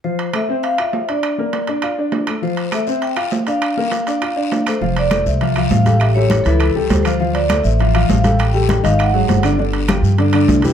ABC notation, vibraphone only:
X:1
M:4/4
L:1/8
Q:1/4=201
K:F
V:1 name="Vibraphone"
c2 e2 f e2 d- | d4- d z3 | c2 e2 g2 z f- | f6- f c- |
c d2 e3 f2 | e ^c2 A4 =c- | c d2 e3 f2 | g g2 f _g3 z |
z8 |]